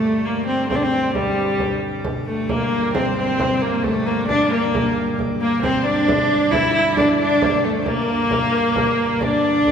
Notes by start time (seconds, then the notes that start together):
Already playing: G2 D3 A3
0.02 A3, frame drum
0.25 A#3
0.47 C4, frame drum
0.69 C4, frame drum
0.76 D4
0.83 C4
1.15 G3, frame drum
1.38 frame drum
1.60 frame drum
2.04 frame drum
2.26 A3 A4
2.49 G2 D3 A#3 A#4, frame drum
2.72 A#3, frame drum
2.94 C4 C5, frame drum
3.17 C4 C5, frame drum
3.40 frame drum
3.56 C4
3.62 A#3 A#4
3.83 A3 A4, frame drum
4.06 A#3 A#4, frame drum
4.29 D4 D5, frame drum
4.51 A#3 A#4, frame drum
4.75 frame drum
5.19 frame drum
5.41 A#3 A#4, frame drum
5.63 C4 C5, frame drum
5.85 D4 D5, frame drum
6.08 frame drum
6.51 E4 E5, frame drum
6.74 E4
6.96 D4 D5, frame drum
7.18 D4 D5
7.42 A#3, frame drum
7.64 A3 A4, frame drum
7.79 C5
7.86 G2 D3 A#3 A#4, frame drum
8.09 frame drum
8.31 frame drum
8.54 frame drum
8.76 frame drum
9.20 D4 D5, frame drum
9.44 frame drum
9.67 frame drum